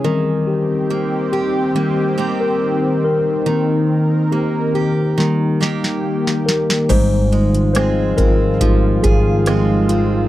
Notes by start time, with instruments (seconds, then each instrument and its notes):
Already playing: steel-string acoustic guitar G#3 C#4 G#4
0.04 analog synth pad D#3 C4 G4, tine electric piano D#3 G3 C4 A#4, steel-string acoustic guitar D#3
0.47 tine electric piano G4
0.90 steel-string acoustic guitar A#3
1.32 tine electric piano G4, steel-string acoustic guitar G4
1.75 tine electric piano D#3 G3 C4, steel-string acoustic guitar A#3
2.18 steel-string acoustic guitar A#3 C4 G4
2.41 tine electric piano A#4
3.04 tine electric piano A#4
3.46 steel-string acoustic guitar D#3, tine electric piano D#3 A#3 D#4, analog synth pad A#4
4.32 steel-string acoustic guitar A#3, tine electric piano G4
4.75 tine electric piano G4, steel-string acoustic guitar G4
5.17 tine electric piano D#3 G3 A#3, steel-string acoustic guitar D#3, analog synth pad A#3 G4, snare
5.61 steel-string acoustic guitar A#3 D#4 G4, snare
5.84 snare
6.27 snare
6.46 tine electric piano A#4, snare
6.70 snare
6.89 fretless electric bass G#1, steel-string acoustic guitar G#2, analog synth pad D#3 F3 F4, tine electric piano G3 G#3 D#4 C5, kick, closed hi-hat, crash
7.32 steel-string acoustic guitar G#3, closed hi-hat
7.55 closed hi-hat
7.74 steel-string acoustic guitar G#3 C4 G#4, tine electric piano C5, cross-stick, closed hi-hat
8.17 fretless electric bass G#1, steel-string acoustic guitar C4, tine electric piano A#4, kick, closed hi-hat
8.61 steel-string acoustic guitar F3, tine electric piano G#3 D#4 G4, kick, closed hi-hat
9.03 fretless electric bass G#1, tine electric piano G#4, steel-string acoustic guitar G#4, kick, closed hi-hat
9.46 steel-string acoustic guitar G#3 C4 G#4, cross-stick, closed hi-hat
9.89 steel-string acoustic guitar C4, tine electric piano F4, closed hi-hat